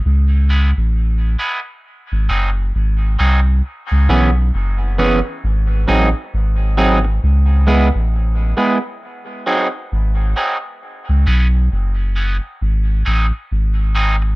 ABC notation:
X:1
M:4/4
L:1/16
Q:"Swing 16ths" 1/4=67
K:C#m
V:1 name="Clean electric guitar"
z2 [G,B,EG]2 z2 [G,B,EG]2 z2 [F,^B,DG]2 z2 [F,B,DG]2 | z2 [E,B,CG]2 z2 [E,B,CG]2 z2 [F,^B,DG]2 z2 [F,B,DG]2 | z2 [G,B,EG]2 z2 [G,B,EG]2 z2 [F,^B,DG]2 z2 [F,B,DG]2 | z2 [E,B,CG]2 z2 [E,B,CG]2 z2 [F,^B,DG]2 z2 [F,B,DG]2 |]
V:2 name="Sub bass" clef=bass
C,,3 A,,,3 z3 G,,, F,,,2 G,,,2 ^B,,,2 | z C,, B,,,2 F,,,3 z G,,,2 A,,, z G,,,4 | C,,3 A,,,3 z6 G,,,2 z2 | z C,, B,,,2 F,,,3 z G,,,2 A,,, z G,,,4 |]